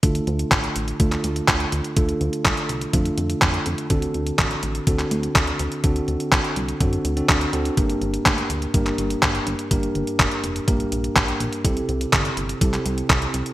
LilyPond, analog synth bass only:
\new Staff \with { instrumentName = "Analog synth bass" } { \clef bass \time 4/4 \key d \minor \tempo 4 = 124 d,8 d,8 a,,8 a,,8 d,8 d,8 d,8 d,8 | d,8 d,8 c,8 c,8 f,8 f,8 f,8 f,8 | d,8 d,8 a,,8 a,,8 d,8 d,8 d,8 d,8 | d,8 d,8 c,8 c,8 fis,8 d,8 d,8 d,8 |
g,,8 g,,8 d,8 d,8 g,,8 g,,8 g,,8 g,,8 | g,,8 g,,8 f,,8 f,,8 bes,,8 bes,,8 bes,,8 bes,,8 | c,8 c,8 g,,8 g,,8 c,8 c,8 c,8 c,8 | }